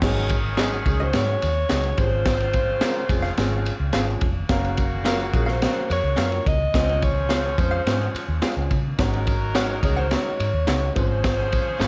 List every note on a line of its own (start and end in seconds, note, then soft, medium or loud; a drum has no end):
0.02 0.82 G#1 loud
0.02 1.67 D#3 medium
0.02 0.33 F#3 loud
0.02 0.33 G#3 loud
0.02 0.33 C#4 loud
0.02 1.67 C#4 medium
0.02 0.33 D#4 loud
0.02 0.33 G#4 loud
0.02 1.67 G#4 medium
0.02 kick loud
0.02 snare loud
0.02 crash loud
0.29 kick medium
0.29 ride medium
0.29 tambourine soft
0.57 0.73 F#3 medium
0.57 0.74 G#3 medium
0.57 0.70 C#4 medium
0.57 0.73 C#4 medium
0.57 0.73 D#4 medium
0.57 0.70 F#4 medium
0.57 0.74 G#4 loud
0.57 0.70 G#4 medium
0.57 0.71 D#5 loud
0.57 snare loud
0.57 clap loud
0.57 ride medium
0.57 tambourine loud
0.86 1.16 C#2 medium
0.86 1.02 F#3 medium
0.86 1.02 G#3 medium
0.86 1.02 C#4 medium
0.86 1.02 D#4 medium
0.86 1.02 G#4 medium
0.86 1.04 G#4 medium
0.86 kick medium
0.86 ride medium
0.86 tambourine medium
1.00 1.10 C#4 medium
1.00 1.10 F#4 medium
1.00 1.10 G#4 medium
1.00 1.17 C5 loud
1.00 1.09 D#5 medium
1.13 1.35 G#2 loud
1.13 1.45 F#3 medium
1.13 1.45 G#3 medium
1.13 1.45 C#4 medium
1.13 1.45 D#4 medium
1.13 1.45 G#4 medium
1.13 2.01 C#5 loud
1.13 snare loud
1.13 ride medium
1.13 tambourine medium
1.42 1.63 D#2 medium
1.42 ride medium
1.42 tambourine medium
1.69 1.91 C#2 medium
1.69 1.98 F#3 medium
1.69 1.97 G#3 medium
1.69 1.81 C#4 medium
1.69 1.97 C#4 medium
1.69 1.98 D#4 medium
1.69 1.82 F#4 loud
1.69 1.98 G#4 medium
1.69 1.82 G#4 loud
1.69 1.82 D#5 loud
1.69 snare loud
1.69 clap loud
1.69 ride medium
1.69 tambourine medium
1.83 ride soft
1.97 2.82 G#1 loud
1.97 4.17 C#3 medium
1.97 2.65 F3 medium
1.97 2.65 G#3 medium
1.97 4.17 C4 medium
1.97 2.65 C4 medium
1.97 2.65 C#4 medium
1.97 4.17 F4 medium
1.97 2.05 G4 medium
1.97 3.66 C5 loud
1.97 kick loud
1.97 ride medium
1.97 tambourine soft
2.05 2.69 G#4 medium
2.26 kick loud
2.26 snare loud
2.26 ride medium
2.26 tambourine soft
2.40 ride soft
2.53 kick medium
2.53 ride medium
2.53 tambourine soft
2.81 2.97 F3 medium
2.81 2.97 G#3 medium
2.81 2.98 C4 medium
2.81 2.93 C#4 medium
2.81 2.98 C#4 medium
2.81 2.94 G#4 medium
2.81 2.97 A#4 loud
2.81 2.94 C5 medium
2.81 2.94 F5 medium
2.81 snare loud
2.81 clap loud
2.81 ride medium
2.81 tambourine loud
3.09 3.30 F1 loud
3.09 3.25 F3 medium
3.09 3.25 G#3 medium
3.09 3.25 C4 medium
3.09 3.25 C#4 medium
3.09 3.25 G#4 loud
3.09 kick loud
3.09 ride medium
3.09 tambourine soft
3.22 3.33 C#4 medium
3.22 3.33 G#4 medium
3.22 3.33 C5 medium
3.22 3.32 F5 medium
3.22 snare soft
3.37 3.69 G#1 loud
3.37 3.69 F3 medium
3.37 3.68 G#3 medium
3.37 3.68 C4 medium
3.37 3.69 C#4 medium
3.37 3.69 G#4 loud
3.37 snare loud
3.37 ride medium
3.37 tambourine medium
3.65 ride medium
3.65 tambourine medium
3.80 3.90 C#2 medium
3.93 4.15 G#1 medium
3.93 4.25 F3 medium
3.93 4.25 G#3 medium
3.93 4.25 C4 medium
3.93 4.05 C#4 medium
3.93 4.24 C#4 medium
3.93 4.05 G#4 medium
3.93 4.25 G#4 loud
3.93 4.06 C5 medium
3.93 4.06 F5 medium
3.93 snare loud
3.93 clap medium
3.93 ride medium
3.93 tambourine medium
4.21 4.43 F1 medium
4.21 kick loud
4.21 ride medium
4.49 5.30 F#1 loud
4.49 6.42 C#3 medium
4.49 4.81 F#3 loud
4.49 4.81 A#3 loud
4.49 6.42 A#3 medium
4.49 4.81 C#4 loud
4.49 6.42 F#4 medium
4.49 4.81 A#4 loud
4.49 4.81 F5 loud
4.49 kick loud
4.49 snare loud
4.49 ride medium
4.64 ride soft
4.77 kick medium
4.77 ride medium
4.77 tambourine soft
5.05 5.21 F#3 medium
5.05 5.21 A#3 medium
5.05 5.17 C#4 medium
5.05 5.21 C#4 medium
5.05 5.21 F4 medium
5.05 5.17 F#4 medium
5.05 5.17 A#4 medium
5.05 5.21 A#4 loud
5.05 5.18 F5 medium
5.05 snare loud
5.05 clap loud
5.05 ride medium
5.05 tambourine loud
5.34 5.65 A#1 loud
5.34 5.50 F#3 medium
5.34 5.50 A#3 medium
5.34 5.50 C#4 medium
5.34 5.50 F4 medium
5.34 5.51 G#4 medium
5.34 5.50 A#4 medium
5.34 kick loud
5.34 ride medium
5.34 tambourine medium
5.46 5.57 C#4 medium
5.46 5.57 F#4 medium
5.46 5.57 A#4 medium
5.46 5.91 C5 loud
5.46 5.56 F5 medium
5.46 snare soft
5.62 5.93 F#3 medium
5.62 5.93 A#3 medium
5.62 5.93 C#4 medium
5.62 5.93 A#4 medium
5.62 5.93 F5 medium
5.62 snare loud
5.62 ride medium
5.62 tambourine medium
5.90 6.00 F2 medium
5.90 6.49 C#5 loud
5.90 ride medium
5.90 tambourine medium
6.03 6.14 C#2 loud
6.16 6.39 F#2 medium
6.16 6.49 F#3 medium
6.16 6.49 A#3 medium
6.16 6.29 C#4 medium
6.16 6.49 C#4 medium
6.16 6.49 F4 medium
6.16 6.29 F#4 medium
6.16 6.30 A#4 medium
6.16 6.49 A#4 medium
6.16 6.30 F5 medium
6.16 snare loud
6.16 clap medium
6.16 ride medium
6.16 tambourine loud
6.32 ride soft
6.46 6.67 C#2 medium
6.46 7.05 D#5 loud
6.46 kick loud
6.46 ride medium
6.46 tambourine soft
6.74 7.54 C#2 loud
6.74 8.67 F3 medium
6.74 7.05 G#3 medium
6.74 7.05 C4 medium
6.74 8.67 C#4 medium
6.74 7.05 C#4 medium
6.74 7.06 F4 medium
6.74 8.67 G#4 medium
6.74 7.06 C5 loud
6.74 kick loud
6.74 snare loud
6.74 ride medium
6.74 tambourine soft
6.89 ride soft
7.02 7.62 C#5 loud
7.02 kick medium
7.02 ride medium
7.02 tambourine soft
7.29 7.46 G#3 medium
7.29 7.46 C4 medium
7.29 7.46 C#4 medium
7.29 7.42 F4 medium
7.29 7.46 F4 medium
7.29 7.42 G#4 medium
7.29 7.42 C5 medium
7.29 7.46 C5 medium
7.29 7.42 F5 medium
7.29 snare loud
7.29 clap loud
7.29 ride medium
7.29 tambourine loud
7.58 7.79 F2 medium
7.58 7.74 G#3 medium
7.58 7.74 C4 medium
7.58 7.74 C#4 medium
7.58 7.74 F4 medium
7.58 7.74 C5 medium
7.58 8.16 C5 medium
7.58 kick medium
7.58 ride medium
7.58 tambourine medium
7.71 7.82 F4 medium
7.71 7.82 G#4 medium
7.71 7.81 C5 medium
7.71 7.81 F5 medium
7.86 8.07 G#2 loud
7.86 8.17 G#3 medium
7.86 8.17 C4 medium
7.86 8.17 C#4 medium
7.86 8.17 F4 medium
7.86 8.17 C5 medium
7.86 snare loud
7.86 ride medium
7.86 tambourine medium
8.14 muted fingered electric bass stroke soft
8.14 ride medium
8.14 tambourine medium
8.28 8.39 D#2 medium
8.42 8.74 G#3 medium
8.42 8.74 C4 medium
8.42 8.74 C#4 medium
8.42 8.54 F4 medium
8.42 8.74 F4 medium
8.42 8.54 G#4 medium
8.42 8.74 G#4 medium
8.42 8.55 C5 medium
8.42 8.55 F5 medium
8.42 muted fingered electric bass stroke soft
8.42 snare loud
8.42 clap medium
8.42 ride medium
8.42 tambourine medium
8.57 8.67 C#2 medium
8.71 8.92 C#3 loud
8.71 kick medium
8.71 ride medium
8.71 tambourine soft
8.98 9.79 G#1 loud
8.98 10.64 F#3 medium
8.98 9.30 G#3 loud
8.98 9.30 C#4 loud
8.98 10.64 D#4 medium
8.98 9.30 D#4 loud
8.98 9.30 F#4 loud
8.98 10.64 A#4 medium
8.98 9.30 C#5 loud
8.98 kick loud
8.98 snare loud
8.98 ride medium
8.98 tambourine soft
9.14 ride soft
9.27 kick medium
9.27 ride medium
9.27 tambourine soft
9.55 9.70 G#3 medium
9.55 9.71 C#4 medium
9.55 9.67 D#4 medium
9.55 9.71 D#4 medium
9.55 9.71 F#4 medium
9.55 9.67 G#4 medium
9.55 9.70 C#5 loud
9.55 9.67 C#5 loud
9.55 9.67 F#5 loud
9.55 snare loud
9.55 clap loud
9.55 ride medium
9.55 tambourine loud
9.83 10.14 C#2 medium
9.83 9.99 G#3 medium
9.83 9.99 C#4 medium
9.83 9.99 D#4 medium
9.83 9.99 F#4 medium
9.83 9.97 G#4 medium
9.83 9.99 C#5 medium
9.83 kick loud
9.83 ride medium
9.83 tambourine soft
9.97 10.07 D#4 medium
9.97 10.07 G#4 medium
9.97 10.14 C5 medium
9.97 10.07 C#5 medium
9.97 10.06 F#5 medium
10.11 10.42 G#3 medium
10.11 10.42 C#4 medium
10.11 10.42 D#4 medium
10.11 10.42 F#4 medium
10.11 10.42 C#5 medium
10.11 10.95 C#5 loud
10.11 snare loud
10.11 ride medium
10.11 tambourine medium
10.40 10.50 G#2 medium
10.40 ride medium
10.40 tambourine medium
10.53 10.64 D#2 medium
10.67 10.89 C#2 medium
10.67 10.94 G#3 medium
10.67 10.94 C#4 medium
10.67 10.79 D#4 medium
10.67 10.96 D#4 medium
10.67 10.96 F#4 medium
10.67 10.80 G#4 medium
10.67 10.96 C#5 medium
10.67 10.80 C#5 medium
10.67 10.80 F#5 medium
10.67 snare loud
10.67 clap loud
10.67 ride medium
10.67 tambourine medium
10.95 11.59 G#1 loud
10.95 11.88 F3 medium
10.95 11.63 G#3 medium
10.95 11.63 C4 medium
10.95 11.63 C#4 medium
10.95 11.88 C#4 medium
10.95 11.63 F4 medium
10.95 11.88 G#4 medium
10.95 11.63 C5 medium
10.95 11.88 C5 loud
10.95 kick medium
10.95 ride medium
10.95 tambourine soft
11.24 kick loud
11.24 snare loud
11.24 ride medium
11.24 tambourine soft
11.52 kick medium
11.52 ride medium
11.52 tambourine soft
11.80 11.88 G#1 loud
11.80 11.88 G#3 medium
11.80 11.88 C4 medium
11.80 11.88 C#4 medium
11.80 11.88 F4 medium
11.80 11.88 G#4 medium
11.80 11.88 C5 loud
11.80 11.88 C5 medium
11.80 11.88 F5 loud
11.80 snare loud
11.80 clap loud
11.80 ride medium
11.80 tambourine loud